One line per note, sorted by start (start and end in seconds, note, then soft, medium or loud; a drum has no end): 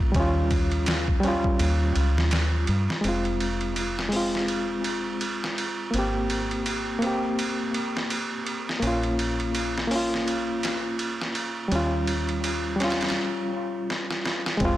0.00 0.12 A#1 medium
0.00 0.17 A#3 medium
0.00 0.11 C#4 medium
0.00 0.13 F4 loud
0.12 1.57 D#2 medium
0.12 1.18 G3 medium
0.12 kick medium
0.12 ride medium
0.16 1.20 C#4 medium
0.16 1.22 F4 medium
0.51 kick medium
0.51 ride medium
0.72 ride soft
0.86 snare loud
0.86 ride medium
1.08 kick medium
1.20 2.99 G3 medium
1.20 ride medium
1.24 3.01 C#4 medium
1.24 3.03 F4 loud
1.44 kick loud
1.59 1.96 D#2 loud
1.59 ride medium
1.96 2.17 C#2 medium
1.96 ride medium
2.17 2.65 D#2 medium
2.17 snare medium
2.31 snare loud
2.31 ride medium
2.67 2.87 G2 medium
2.67 ride medium
2.90 snare soft
3.01 5.90 F1 medium
3.01 4.07 G#3 medium
3.01 ride medium
3.05 4.09 C4 medium
3.05 4.11 F4 medium
3.25 ride soft
3.40 ride medium
3.61 ride soft
3.76 ride medium
3.99 snare medium
4.09 5.88 G#3 medium
4.09 5.90 C4 medium
4.09 open hi-hat medium
4.17 5.92 F4 medium
4.35 snare soft
4.48 ride medium
4.84 ride medium
5.21 ride medium
5.44 snare soft
5.58 ride medium
5.91 8.80 G#1 medium
5.91 6.97 A#3 medium
5.91 6.99 C4 medium
5.91 ride medium
5.99 7.01 G4 medium
6.30 ride medium
6.51 ride soft
6.66 ride medium
6.99 8.77 A#3 medium
6.99 8.79 C4 medium
6.99 ride medium
7.07 8.81 G4 medium
7.39 ride medium
7.74 ride medium
7.97 snare soft
8.10 ride medium
8.47 ride medium
8.69 snare soft
8.80 11.68 A#1 medium
8.80 9.86 A#3 medium
8.80 9.87 C#4 medium
8.80 ride medium
8.87 9.90 F4 medium
9.03 ride soft
9.19 ride medium
9.40 ride soft
9.55 ride medium
9.78 snare medium
9.87 11.66 A#3 medium
9.87 11.68 C#4 medium
9.87 open hi-hat medium
9.95 11.70 F4 medium
10.14 snare soft
10.28 ride medium
10.63 snare medium
10.63 ride medium
10.99 ride medium
11.22 snare soft
11.35 ride medium
11.68 13.16 D#2 medium
11.68 12.75 G3 medium
11.68 12.77 C#4 medium
11.68 ride medium
11.76 12.78 F4 medium
12.07 ride medium
12.29 ride soft
12.44 ride medium
12.76 14.55 G3 medium
12.80 14.57 C#4 medium
12.80 14.59 F4 medium
12.80 snare medium
12.80 ride medium
12.90 snare medium
12.90 ride medium
13.01 snare medium
13.01 ride medium
13.09 snare medium
13.09 ride medium
13.90 snare medium
14.11 snare soft
14.26 snare medium
14.46 snare medium
14.57 14.77 F1 medium
14.57 14.77 G#3 medium
14.57 14.77 C4 medium
14.57 kick loud
14.57 ride medium
14.65 14.77 F4 loud